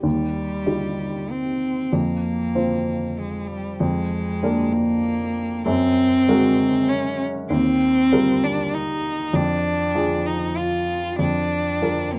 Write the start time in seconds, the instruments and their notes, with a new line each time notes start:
0.03 upright piano D#2, cello G3
0.66 upright piano D#4 F4 G4
1.31 cello C4
1.93 upright piano F2, cello A#3
2.55 upright piano C4 F4 C5
3.18 cello G#3
3.48 cello G3
3.80 upright piano F2, cello G#3
4.43 upright piano A#3 D4 A#4
4.73 cello A#3
5.66 upright piano F#2, cello C4
6.28 upright piano G#3 F#4 A#4
6.89 cello C#4
7.50 upright piano D#2, cello C4
8.12 upright piano G3 F4 A#4
8.44 cello D4
8.74 cello D#4
9.33 upright piano F2, cello D4
9.95 upright piano F3 F4 G#4
10.26 cello D#4
10.57 cello F4
11.19 upright piano F2, cello D4
11.82 upright piano F3 F4 A#4
12.14 cello A#3